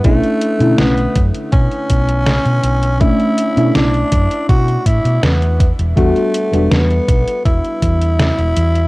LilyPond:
<<
  \new Staff \with { instrumentName = "FM electric piano" } { \time 4/4 \key b \minor \tempo 4 = 81 <a cis' d' e'>8. <d a cis' e'>2.~ <d a cis' e'>16 | <a cis' d' e'>16 r8 <a cis' d' e'>16 r2. | <g b d' fis'>8. <g b d' fis'>2.~ <g b d' fis'>16 | }
  \new Staff \with { instrumentName = "Tenor saxophone" } { \time 4/4 \key b \minor a4 b8 r8 cis'2 | e'4 d'4 fis'8 e'8 b8 r8 | a4 b4 e'2 | }
  \new Staff \with { instrumentName = "Fingered electric bass" } { \clef bass \time 4/4 \key b \minor b,,16 r8 b,16 b,,16 r16 fis,16 r16 b,16 r16 b,,8. b,16 b,,8~ | b,,16 r8 b,16 b,,16 r16 fis,16 r16 b,16 r16 a,16 b,16 e,8. e,,16 | e,16 r8 e,,16 e,16 r16 b,,16 r16 e,,16 r16 e,8. e,,16 e,8 | }
  \new DrumStaff \with { instrumentName = "Drums" } \drummode { \time 4/4 <hh bd>16 hh16 hh16 hh16 <hh sn>16 hh16 <hh bd>16 hh16 <hh bd>16 hh16 <hh bd>16 hh16 <hh sn>16 hh16 hh16 hh16 | <hh bd>16 hh16 hh16 hh16 <hh sn>16 hh16 <hh bd>16 hh16 <hh bd>16 hh16 <hh bd>16 hh16 <hh sn>16 hh16 <hh bd>16 hh16 | <hh bd>16 hh16 hh16 hh16 <hh sn>16 hh16 <hh bd>16 hh16 <hh bd>16 hh16 <hh bd>16 hh16 <hh sn>16 hh16 hh16 hh16 | }
>>